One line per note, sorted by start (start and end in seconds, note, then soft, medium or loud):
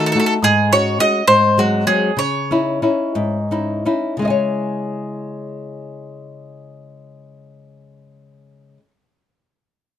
0.00 0.14 D#3 medium
0.00 0.14 A3 medium
0.00 0.14 D#4 medium
0.00 0.15 F#4 medium
0.06 0.11 A4 medium
0.12 0.37 A3 medium
0.12 0.37 D#4 soft
0.12 0.18 A4 medium
0.16 0.38 F#4 medium
0.16 0.25 A4 medium
0.26 0.33 A4 medium
0.42 0.98 G#2 medium
0.42 0.71 G#4 medium
0.72 0.98 G#3 soft
0.72 0.99 C#4 soft
0.72 1.00 F#4 medium
0.72 0.98 C#5 medium
0.99 1.21 G#3 soft
0.99 1.22 C#4 soft
0.99 1.22 F#4 medium
0.99 1.25 D#5 medium
1.27 1.85 G#2 medium
1.27 1.59 C5 medium
1.58 1.85 F#3 medium
1.58 1.86 G#3 medium
1.58 1.86 C4 medium
1.58 1.85 F#4 medium
1.87 2.10 F#3 medium
1.87 2.10 G#3 soft
1.87 2.11 C4 medium
1.87 2.17 G#4 medium
2.17 2.79 C#3 medium
2.17 3.47 C#5 medium
2.51 2.81 C#4 soft
2.51 2.81 D#4 soft
2.51 2.82 E4 medium
2.82 3.37 C#4 medium
2.82 3.37 D#4 soft
2.82 3.38 E4 soft
3.15 3.84 G#2 medium
3.51 3.84 C#4 soft
3.51 3.85 D#4 soft
3.51 3.85 E4 medium
3.85 4.15 C#4 soft
3.85 4.15 D#4 soft
3.85 4.15 E4 medium
4.17 8.77 C#3 medium
4.17 8.80 G#3 soft
4.22 8.82 E4 medium
4.22 4.27 D#5 medium
4.27 8.91 C#5 medium
4.27 8.88 G#5 soft